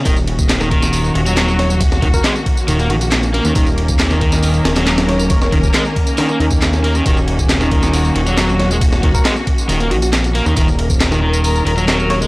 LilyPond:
<<
  \new Staff \with { instrumentName = "Soft synth lead" } { \time 4/4 \key ees \minor \tempo 4 = 137 r2. r8 des''16 r16 | r8. bes'16 r4. ges'16 ges'16 r4 | r2. r8 des''16 r16 | des''16 des''16 r2. r8 |
r2. r8 des''16 r16 | r8. bes'16 r4. ges'16 ges'16 r4 | r2. r8 des''16 r16 | }
  \new Staff \with { instrumentName = "String section" } { \time 4/4 \key ees \minor << { ges'1~ | ges'1 | bes'1~ | bes'1 |
ges'1~ | ges'1 | bes'1 | } \\ { <ees bes des'>1~ | <ees bes des'>1~ | <ees bes des'>1~ | <ees bes des'>1~ |
<ees bes des'>1~ | <ees bes des'>1~ | <ees bes des'>1 | } >> }
  \new Staff \with { instrumentName = "Overdriven electric guitar" } { \clef bass \time 4/4 \key ees \minor ees16 r4 ees16 ees4 ees16 ges16 ges4 | r8 ees16 r16 aes16 r8. ees16 bes16 ees16 r8. bes16 ees16 | ees16 r4 ees16 ees4 ees16 ges16 ges4 | r8 ees16 r16 aes16 r8. ees16 bes16 ees16 r8. bes16 ees16 |
ees16 r4 ees16 ees4 ees16 ges16 ges8. aes16 | r8 ees16 r16 aes16 r8. ees16 bes16 ees16 r8. bes16 ees16 | ees16 r4 ees16 ees4 ees16 ges16 ges8. aes16 | }
  \new Staff \with { instrumentName = "Analog synth bass" } { \clef bass \time 4/4 \key ees \minor ees,,2~ ees,,8 ees,,4.~ | ees,,4 r4 ees,,8 bes,,4~ bes,,16 ees,16 | ees,,2~ ees,,8 ees,,4.~ | ees,,4 r4. ees,4. |
ees,,2~ ees,,8 ees,,4.~ | ees,,4 r4 ees,,8 bes,,4~ bes,,16 ees,16 | ees,,2~ ees,,8 ees,,4. | }
  \new DrumStaff \with { instrumentName = "Drums" } \drummode { \time 4/4 <bd cymr tamb>16 tamb16 cymr16 <bd tamb>16 <hc cymr sn tamb>16 <sn tamb>16 <bd cymr>16 <sn tamb>16 <hho tamb>16 tamb16 cymr16 tamb16 <hc cymr sn tamb>16 tamb16 <cymr sn>16 tamb16 | <bd cymr tamb>16 <sn tamb>16 <bd cymr>16 <bd tamb>16 <hc cymr sn tamb>16 tamb16 <bd cymr>16 tamb16 <cymr tamb>16 <cymr tamb>16 cymr16 <cymr tamb>16 <hc cymr sn tamb>16 <cymr tamb>16 cymr16 tamb16 | <bd cymr tamb>16 tamb16 cymr16 <bd tamb>16 <hc cymr sn tamb>16 <sn tamb>16 <bd cymr>16 <sn tamb>16 <hho tamb>16 tamb16 <cymr sn>16 <cymr sn tamb>16 <hc cymr sn tamb>16 <cymr sn tamb>16 <cymr sn>16 tamb16 | <bd cymr tamb>16 <sn tamb>16 <bd cymr>16 <bd tamb>16 <hc cymr sn tamb>16 tamb16 <bd cymr>16 tamb16 <cymr sn tamb>16 tamb16 cymr16 <bd tamb>16 <hc cymr sn tamb>16 <sn tamb>16 cymr16 tamb16 |
<bd cymr tamb>16 tamb16 cymr16 <bd tamb>16 <hc cymr sn tamb>16 <sn tamb>16 <bd cymr>16 <sn tamb>16 <hho tamb>16 tamb16 cymr16 tamb16 <hc cymr sn tamb>16 tamb16 <cymr sn>16 tamb16 | <bd cymr tamb>16 <sn tamb>16 <bd cymr>16 <bd tamb>16 <hc cymr sn tamb>16 tamb16 <bd cymr>16 tamb16 <cymr tamb>16 <cymr tamb>16 cymr16 <cymr tamb>16 <hc cymr sn tamb>16 <cymr tamb>16 cymr16 tamb16 | <bd cymr tamb>16 tamb16 cymr16 <bd tamb>16 <hc cymr sn tamb>16 <sn tamb>8 tamb16 <hho tamb>16 tamb16 cymr16 tamb16 <hc cymr sn tamb>16 tamb16 <cymr sn>16 tamb16 | }
>>